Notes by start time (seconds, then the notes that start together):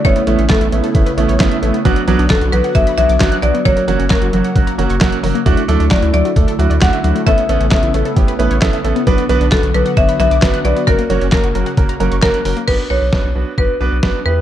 Already playing: A3
0.05 A1 C#3 A3 B3 C#4 E4 C#5, kick, closed hi-hat
0.16 B3, closed hi-hat
0.27 A1 A3 B3 C#4 E4, closed hi-hat
0.39 A1 C#4, closed hi-hat
0.50 A3 B3 C#4 E4 A4, kick, snare, clap, closed hi-hat
0.61 A1 E4, closed hi-hat
0.72 A1 A3 B3 C#4 E4, closed hi-hat
0.84 A4, closed hi-hat
0.95 A1 A3 B3 C#4 E4, kick, closed hi-hat
1.06 B4, closed hi-hat
1.17 A1 A3 B3 C#4 E4, closed hi-hat
1.29 A1 C#5, closed hi-hat
1.40 A1 A3 B3 C#4 E4, kick, snare, clap, closed hi-hat
1.51 E5, closed hi-hat
1.62 A1 A3 B3 C#4 E4, closed hi-hat
1.74 B3, closed hi-hat
1.85 B1 D3 F#3 B3 D4 F#4, kick, closed hi-hat
1.96 B3, closed hi-hat
2.08 B1 F#3 B3 D4 F#4, closed hi-hat
2.19 B1 D4, closed hi-hat
2.30 F#3 B3 D4 F#4 A4, kick, snare, clap, closed hi-hat
2.41 B1 F#4, closed hi-hat
2.52 B1 F#3 B3 D4 F#4 B4, closed hi-hat
2.64 F#5, closed hi-hat
2.75 B1 F#3 B3 D4 A4 E5, kick, closed hi-hat
2.87 B5, closed hi-hat
2.98 B1 F#3 B3 D4 F#4 E5, closed hi-hat
3.09 B1 D6, closed hi-hat
3.20 B1 F#3 B3 D4 F#4, kick, snare, clap, closed hi-hat
3.32 F#6, closed hi-hat
3.42 B1 F#3 B3 D4 F#4 D5, closed hi-hat
3.54 B3, closed hi-hat
3.65 F#1 C#3 F#3 A#3 C#4 F#4 C#5, kick, closed hi-hat
3.77 A#3, closed hi-hat
3.88 F#1 F#3 A#3 C#4 F#4, closed hi-hat
3.99 F#1 C#4, closed hi-hat
4.10 F#3 A#3 C#4 F#4 A#4, kick, snare, clap, closed hi-hat
4.22 F#1 F#4, closed hi-hat
4.33 F#1 F#3 A#3 C#4 F#4, closed hi-hat
4.44 F#5, closed hi-hat
4.56 F#1 F#3 A#3 C#4 F#4, kick, closed hi-hat
4.67 A#5, closed hi-hat
4.78 F#1 F#3 A#3 C#4 F#4, closed hi-hat
4.89 F#1 C#6, closed hi-hat
5.01 F#1 F#3 A#3 C#4 F#4, kick, snare, clap, closed hi-hat
5.12 F#6, closed hi-hat
5.23 F#1 F#3 A#3 C#4 F#4, open hi-hat
5.35 A#3, closed hi-hat
5.46 D2 D3 F#3 A3 D4 E4 F#4, kick, closed hi-hat
5.57 A3, closed hi-hat
5.68 D2 F#3 A3 D4 E4 A4, closed hi-hat
5.80 D2 D4, closed hi-hat
5.91 F#3 A3 D4 E4 F#4 D5, kick, snare, clap, closed hi-hat
6.02 D2 E4, closed hi-hat
6.14 D2 F#3 A3 D4 E4 A4 D5, closed hi-hat
6.25 F#4, closed hi-hat
6.36 D2 A3 D4 E4 A4, kick, closed hi-hat
6.48 A4, closed hi-hat
6.59 D2 F#3 A3 D4 E4 F#4, closed hi-hat
6.70 D2 D5, closed hi-hat
6.81 D2 A3 D4 E4 F#4 F#5, kick, snare, clap, closed hi-hat
6.93 E5, closed hi-hat
7.04 D2 F#3 A3 D4 E4 F#4, closed hi-hat
7.15 A3, closed hi-hat
7.27 A1 C#3 A3 B3 C#4 E4 A4 E5, kick, closed hi-hat
7.38 B3, closed hi-hat
7.49 A1 A3 B3 C#4 E4 A4, closed hi-hat
7.60 A1 C#4, closed hi-hat
7.71 A3 B3 C#4 E4 A4 E5, kick, snare, clap, closed hi-hat
7.83 A1 E4, closed hi-hat
7.94 A1 A3 B3 C#4 E4 A4, closed hi-hat
8.05 A4, closed hi-hat
8.16 A1 B3 C#4 E4 G4, kick, closed hi-hat
8.28 B4, closed hi-hat
8.39 A1 A3 B3 C#4 E4 B4, closed hi-hat
8.51 A1 C#5, closed hi-hat
8.62 A1 B3 C#4 E4 A4, kick, snare, clap, closed hi-hat
8.73 E5, closed hi-hat
8.84 A1 A3 B3 C#4 E4 A4, closed hi-hat
8.96 B3, closed hi-hat
9.07 B1 D3 F#3 B3 D4 F#4 B4, kick, closed hi-hat
9.18 B3, closed hi-hat
9.29 B1 F#3 B3 D4 F#4 B4, closed hi-hat
9.40 B1 D4, closed hi-hat
9.52 F#3 B3 D4 F#4 A4 B4, kick, snare, clap, closed hi-hat
9.63 B1 F#4, closed hi-hat
9.74 B1 F#3 B3 D4 F#4 A4 B4, closed hi-hat
9.86 F#5, closed hi-hat
9.97 B1 B3 D4 F#4 C#5 E5, kick, closed hi-hat
10.09 B5, closed hi-hat
10.20 B1 F#3 B3 D4 F#4 B4 E5, closed hi-hat
10.31 B1 D6, closed hi-hat
10.42 B1 B3 D4 F#4 B4, kick, snare, clap, closed hi-hat
10.54 F#6, closed hi-hat
10.65 B1 F#3 B3 D4 F#4 B4 D5, closed hi-hat
10.76 B3, closed hi-hat
10.87 F#1 C#3 F#3 A#3 C#4 F#4 A#4, kick, closed hi-hat
10.99 A#3, closed hi-hat
11.10 F#1 F#3 A#3 C#4 F#4 C#5, closed hi-hat
11.21 F#1 C#4, closed hi-hat
11.32 F#3 A#3 C#4 F#4 A#4, kick, snare, clap, closed hi-hat
11.44 F#1 F#4, closed hi-hat
11.55 F#1 F#3 A#3 C#4 F#4 A#4, closed hi-hat
11.66 F#5, closed hi-hat
11.77 F#1 A#3 C#4 F#4 A#4, kick, closed hi-hat
11.89 A#5, closed hi-hat
12.00 F#1 F#3 A#3 C#4 F#4 A#4, closed hi-hat
12.12 F#1 C#6, closed hi-hat
12.22 F#1 A#3 C#4 F#4 A#4, kick, snare, clap, closed hi-hat
12.34 F#6, closed hi-hat
12.45 F#1 F#3 A#3 C#4 F#4 A#4, open hi-hat
12.57 A#3, closed hi-hat
12.68 B1 B3 D4 F#4 B4, kick, crash
12.90 B1 B3 D4 F#4 B4 C#5
13.02 B1
13.13 B3 D4 F#4 B4, kick, snare
13.24 B1
13.35 B1 B3 D4 F#4 B4
13.58 B1 B3 D4 F#4 B4, kick
13.81 B1 B3 D4 F#4 B4
13.92 B1
14.03 B1 B3 D4 F#4 B4, kick, snare
14.26 E2 B3 E4 G4 B4